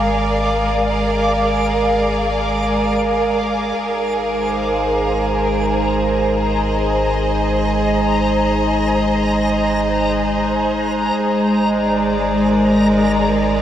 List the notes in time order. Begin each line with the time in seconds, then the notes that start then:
Already playing: G#1 G#3 G#4 A#4 D5 F5 D6
3.77 G#1 G#3 D#4 A#5
4.31 C5
6.42 D#5
11.15 G#1 G#3
11.76 D5
12.49 A#4